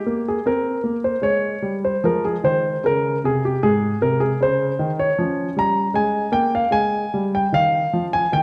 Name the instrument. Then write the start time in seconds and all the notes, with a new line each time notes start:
grand piano
Already playing: G4
0.06 A#3
0.28 G#4
0.46 C4 A#4
0.84 A#3
1.04 C5
1.22 G#3 C#5
1.62 G3
1.85 C5
2.04 F3 G#3 A#4
2.25 G#4
2.44 D#3 C5
2.84 C#3 A#4
3.24 C3 G#4
3.45 G4
3.63 G#2 G#4
4.02 C3 A#4
4.20 G#4
4.41 C#3 C5
4.79 D#3
4.99 C#5
5.18 F3 C#4
5.56 G3 A#5
5.94 G#3 G#5
6.32 A#3 G5
6.55 F5
6.71 G#3 G#5
7.14 G3
7.35 G5
7.53 D#3 F5
7.93 F3
8.13 G#5
8.32 D#3 D#4 G5